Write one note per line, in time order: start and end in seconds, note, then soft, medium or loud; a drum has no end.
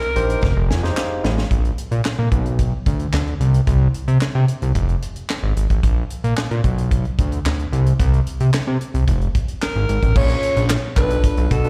0.00 0.84 A#4 loud
0.00 closed hi-hat soft
0.16 0.37 A#1 medium
0.16 0.43 D#4 medium
0.16 0.43 G4 medium
0.16 0.43 A#4 medium
0.16 0.43 C5 loud
0.16 closed hi-hat medium
0.30 closed hi-hat medium
0.43 0.53 F1 loud
0.43 kick loud
0.43 snare medium
0.56 0.72 F1 loud
0.70 0.91 F2 medium
0.70 0.95 G#5 medium
0.70 snare medium
0.83 1.28 D#4 medium
0.83 1.28 G4 medium
0.83 1.28 G#4 medium
0.83 1.28 C5 loud
0.83 snare medium
0.97 1.47 F5 medium
0.97 snare medium
0.97 clap medium
1.24 1.45 A1 loud
1.24 snare loud
1.38 snare medium
1.51 1.72 A#1 loud
1.51 kick loud
1.51 closed hi-hat medium
1.65 closed hi-hat soft
1.78 closed hi-hat medium
1.91 2.02 A#2 loud
1.91 closed hi-hat soft
2.05 2.10 A#2 soft
2.05 snare loud
2.05 clap medium
2.19 2.29 A#2 loud
2.32 2.73 B1 medium
2.32 kick medium
2.32 closed hi-hat medium
2.46 closed hi-hat soft
2.59 kick medium
2.59 closed hi-hat medium
2.86 3.07 D2 medium
2.86 kick loud
2.86 closed hi-hat medium
2.99 closed hi-hat soft
3.13 3.34 D2 medium
3.13 snare medium
3.13 clap medium
3.27 closed hi-hat soft
3.40 3.61 C2 medium
3.40 closed hi-hat medium
3.54 closed hi-hat soft
3.67 3.88 C2 loud
3.67 kick loud
3.67 closed hi-hat medium
3.94 closed hi-hat medium
4.08 4.18 C3 loud
4.08 closed hi-hat soft
4.21 4.27 C3 soft
4.21 snare loud
4.21 clap medium
4.35 4.45 C3 loud
4.48 closed hi-hat medium
4.62 4.72 C2 medium
4.62 closed hi-hat medium
4.75 4.96 F1 loud
4.75 kick medium
4.75 closed hi-hat medium
4.89 closed hi-hat soft
5.02 closed hi-hat medium
5.16 closed hi-hat soft
5.30 snare medium
5.30 clap medium
5.43 5.53 G#1 loud
5.56 5.67 G#1 medium
5.56 closed hi-hat medium
5.70 5.80 A1 medium
5.70 kick medium
5.70 closed hi-hat soft
5.83 6.04 A#1 loud
5.83 kick loud
5.83 closed hi-hat loud
6.10 closed hi-hat medium
6.24 6.34 A#2 loud
6.24 closed hi-hat soft
6.37 6.43 A#2 soft
6.37 snare loud
6.37 clap medium
6.51 6.61 A#2 loud
6.51 closed hi-hat soft
6.64 7.06 B1 medium
6.64 kick medium
6.64 closed hi-hat medium
6.78 closed hi-hat medium
6.91 kick loud
6.91 closed hi-hat medium
7.05 closed hi-hat soft
7.19 7.39 D2 medium
7.19 kick loud
7.19 closed hi-hat medium
7.32 closed hi-hat soft
7.46 7.66 D2 medium
7.46 snare medium
7.46 clap medium
7.59 closed hi-hat soft
7.73 7.93 C2 loud
7.73 closed hi-hat medium
7.86 closed hi-hat soft
8.00 8.20 C2 loud
8.00 kick loud
8.00 closed hi-hat loud
8.14 closed hi-hat soft
8.27 closed hi-hat medium
8.40 8.51 C3 medium
8.40 closed hi-hat soft
8.54 8.59 C3 soft
8.54 snare loud
8.54 clap medium
8.67 8.78 C3 medium
8.81 closed hi-hat medium
8.94 9.05 C2 medium
8.94 closed hi-hat medium
9.08 9.28 F1 loud
9.08 kick medium
9.08 closed hi-hat medium
9.21 closed hi-hat soft
9.35 kick loud
9.35 closed hi-hat medium
9.48 closed hi-hat soft
9.62 10.18 A#4 medium
9.62 snare loud
9.62 clap medium
9.76 9.86 G#1 loud
9.76 closed hi-hat soft
9.89 9.99 G#1 medium
9.89 closed hi-hat medium
10.02 10.13 A1 medium
10.02 kick medium
10.02 closed hi-hat soft
10.16 10.37 A#1 loud
10.16 10.69 C#4 medium
10.16 10.70 F4 medium
10.16 10.70 G#4 medium
10.16 10.70 C#5 medium
10.16 10.70 C#5 loud
10.16 kick loud
10.16 crash loud
10.30 closed hi-hat soft
10.43 closed hi-hat medium
10.56 10.77 A#1 loud
10.56 closed hi-hat soft
10.70 snare loud
10.70 clap medium
10.70 clap loud
10.97 11.18 B1 loud
10.97 11.51 D4 medium
10.97 11.51 F4 medium
10.97 11.51 A4 medium
10.97 11.51 B4 medium
10.97 11.53 B4 loud
10.97 kick loud
10.97 clap medium
10.97 closed hi-hat medium
11.10 closed hi-hat medium
11.24 kick medium
11.24 closed hi-hat loud
11.37 11.48 B1 loud
11.37 closed hi-hat soft
11.51 11.70 B2 medium
11.51 11.70 A4 loud
11.51 kick loud
11.51 closed hi-hat loud
11.64 11.70 D4 medium
11.64 11.70 F4 medium
11.64 11.70 A4 medium
11.64 11.70 B4 medium
11.64 closed hi-hat soft